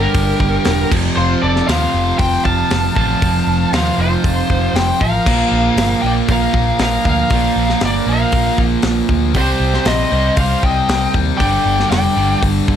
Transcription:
Already playing: distorted electric guitar G2 D3 G3, lead electric guitar G4 A#4
0.14 picked electric bass G1, kick, open hi-hat
0.40 picked electric bass G1, kick
0.65 picked electric bass E1, snare, open hi-hat
0.89 picked electric bass F1, distorted electric guitar F2 C3 F3, kick, crash
1.16 picked electric bass F1, lead electric guitar F4 C5
1.41 picked electric bass F1, lead electric guitar A4 D5
1.56 snare
1.67 picked electric bass D#2, distorted electric guitar F2 C3 F3, lead electric guitar C5 F5, snare, open hi-hat
1.94 picked electric bass F1
2.19 picked electric bass F1, lead electric guitar C5 G5, kick, open hi-hat
2.45 picked electric bass F1, lead electric guitar F5 A5, kick
2.71 picked electric bass F1, snare, open hi-hat
2.94 picked electric bass A1, distorted electric guitar F2 C3 F3, lead electric guitar F5 A5, kick
3.22 picked electric bass F1, kick, open hi-hat
3.47 picked electric bass F1
3.72 picked electric bass D#2, distorted electric guitar F2 C3 F3, lead electric guitar C5 F5, snare, open hi-hat
3.98 picked electric bass F1, lead electric guitar F4 C5
4.24 picked electric bass F1, kick, open hi-hat
4.50 picked electric bass F1, kick
4.74 picked electric bass F1, lead electric guitar G5, snare, open hi-hat
4.78 lead electric guitar C5
5.00 picked electric bass A1, lead electric guitar A#4 F5, kick
5.26 picked electric bass A#1, distorted electric guitar A#2 F3 A#3, kick, crash
5.52 picked electric bass A#1
5.76 picked electric bass G1, snare, open hi-hat
6.02 picked electric bass A#1, distorted electric guitar F3 A#3, lead electric guitar G5
6.06 distorted electric guitar A#2, lead electric guitar D5
6.28 picked electric bass A#1, lead electric guitar A#4 F5, kick, open hi-hat
6.53 picked electric bass A#1, kick
6.79 picked electric bass A#1, lead electric guitar A#4 F5, snare, open hi-hat
7.05 picked electric bass D2, lead electric guitar A#4, kick
7.09 lead electric guitar F5
7.30 picked electric bass A#1, distorted electric guitar A#2 F3 A#3, kick, open hi-hat
7.56 picked electric bass A#1
7.69 snare
7.81 picked electric bass G1, snare, open hi-hat
7.85 lead electric guitar A#4 D5
8.06 picked electric bass A#1, distorted electric guitar A#2 F3 A#3, lead electric guitar A#4
8.12 lead electric guitar F5
8.32 picked electric bass A#1, kick, open hi-hat
8.58 picked electric bass A#1, kick
8.82 picked electric bass A#1, snare, open hi-hat
9.09 picked electric bass D2, kick
9.34 picked electric bass C2, distorted electric guitar C3 G3 C4, lead electric guitar G4 C5, kick, open hi-hat
9.60 picked electric bass C2
9.74 snare
9.85 picked electric bass A#1, lead electric guitar C5 D#5, snare, open hi-hat
10.12 picked electric bass C2, distorted electric guitar C3 G3 C4
10.37 picked electric bass C2, lead electric guitar C5 F5, kick, open hi-hat
10.63 picked electric bass C2, lead electric guitar D#5 G5, kick
10.89 picked electric bass C2, snare, open hi-hat
11.14 picked electric bass D#2, kick
11.37 picked electric bass G1, distorted electric guitar G2, lead electric guitar D5 G5, kick, open hi-hat
11.42 distorted electric guitar D3 G3
11.66 picked electric bass G1
11.80 snare
11.90 picked electric bass F1, lead electric guitar D5 G5, snare, open hi-hat
12.16 picked electric bass G1, distorted electric guitar G2 D3 G3
12.42 picked electric bass G1, kick, open hi-hat
12.68 picked electric bass G1, kick

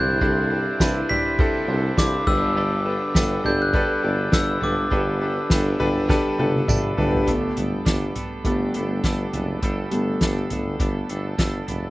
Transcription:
Already playing: tuba C2, clean electric guitar C4 D4 E4, grand piano D4 E4 G4 A4 C5, tonewheel organ G4 E5 C6 D6, glockenspiel G6
0.21 tuba C2, grand piano G2 D4 E4 G4 A4, clean electric guitar C3 G3 C4 D4 E4, kick, ride
0.50 clean electric guitar C4 D4 E4, grand piano D4 E4 G4 A4, ride
0.79 tuba C2, clean electric guitar G3 C4 D4 E4, grand piano D4 E4 G4 B4, kick, snare, ride, tambourine
1.09 clean electric guitar C4 D4 E4, grand piano D4 E4 G4 D5, glockenspiel B6, floor tom, ride
1.39 clean electric guitar C3 G3 C4 D4 E4, grand piano D4 E4 G4 A4, kick, ride
1.68 tuba C2, clean electric guitar C4 D4 E4, grand piano D4 E4 G4 C5, ride
1.97 tuba C2, clean electric guitar G3 C4 D4 E4, grand piano D4 E4 G4 A4, glockenspiel D6, kick, snare, ride, tambourine
2.26 tuba G1, grand piano G2 D3 D4 G4 A4 B4, clean electric guitar B3 D4 A4, tonewheel organ A4 G5 B5, glockenspiel E6, kick, floor tom, crash
2.57 clean electric guitar G3 B3 D4 A4, ride
2.85 clean electric guitar B3 D4 A4, grand piano D4 G4 A4 B4, ride
3.15 tuba G1, clean electric guitar G3 B3 D4 A4, grand piano D4 G4 A4 B4, kick, snare, ride, tambourine
3.44 tuba G1, clean electric guitar B3 D4 A4, grand piano D4 G4 A4 D5, glockenspiel G6, floor tom, ride
3.62 glockenspiel F#6
3.73 clean electric guitar G3 B3 D4 A4, grand piano D4 G4 A4 B4, kick, ride
4.02 tuba G1, clean electric guitar B3 D4 A4, grand piano D4 G4 A4 D5, ride
4.32 tuba G1, clean electric guitar G3 B3 D4 A4, grand piano D4 G4 A4 B4, glockenspiel E6, kick, snare, ride, tambourine
4.61 tuba G1, grand piano G2 D3 D4 G4 A4 B4, clean electric guitar B3 D4 A4, glockenspiel D6, tonewheel organ E6, floor tom, ride
4.91 tuba G1, clean electric guitar G3 B3 D4 A4, grand piano D4 G4 A4 B4, kick, ride
5.21 clean electric guitar B3 D4 A4, grand piano D4 G4 A4 B4, ride
5.50 tuba G1, clean electric guitar G3 B3 D4 A4, grand piano D4 G4 A4 B4, kick, snare, ride, tambourine
5.79 tuba G1, clean electric guitar B3 D4 A4, grand piano D4 G4 A4 B4 B5, floor tom, ride
6.09 clean electric guitar G3 B3 D4 A4, grand piano D4 G4 A4 B4 A5, kick, snare
6.38 tuba G1, clean electric guitar B3 D4 A4, grand piano D4 G4 A4 B4 G5, high tom
6.56 high tom
6.67 tuba G1, clean electric guitar G3 B3 D4 A4, grand piano D4 G4 A4 D5 E5, kick, mid tom, tambourine
6.97 tuba G1, clean electric guitar B3 D4 A4, grand piano D4 G4 A4 B4 D5, floor tom
7.15 floor tom
7.26 tuba G1, grand piano G3 A3 B3, clean electric guitar G3 B3 D4 A4, tonewheel organ A4 G5 B5 D6, kick, closed hi-hat
7.56 tuba G1, clean electric guitar B3 D4 A4, closed hi-hat, floor tom
7.85 tuba G1, clean electric guitar G3 B3 D4 A4, kick, snare, closed hi-hat
8.16 clean electric guitar B3 D4 A4, closed hi-hat, floor tom
8.44 tuba G1, grand piano G3 A3 B3, clean electric guitar G3 B3 D4 A4, kick, closed hi-hat
8.74 tuba G1, clean electric guitar B3 D4 A4, closed hi-hat
9.04 tuba G1, clean electric guitar G3 B3 D4 A4, kick, snare, closed hi-hat
9.33 tuba F#1, clean electric guitar B3 D4 A4, closed hi-hat, floor tom
9.61 tuba G1, clean electric guitar G3 B3 D4 A4, tonewheel organ E6, kick, closed hi-hat
9.91 tuba G1, grand piano G3 A3 B3, clean electric guitar B3 D4 A4, closed hi-hat
10.21 tuba G1, clean electric guitar G3 B3 D4 A4, kick, snare, closed hi-hat
10.50 tuba G1, clean electric guitar B3 D4 A4, closed hi-hat, floor tom
10.79 tuba G1, clean electric guitar G3 B3 D4 A4, kick, closed hi-hat
11.09 tuba G1, clean electric guitar B3 D4 A4, closed hi-hat
11.38 tuba G1, clean electric guitar G3 B3 D4 A4, kick, snare, closed hi-hat
11.67 tuba F#1, clean electric guitar B3 D4 A4, closed hi-hat, floor tom

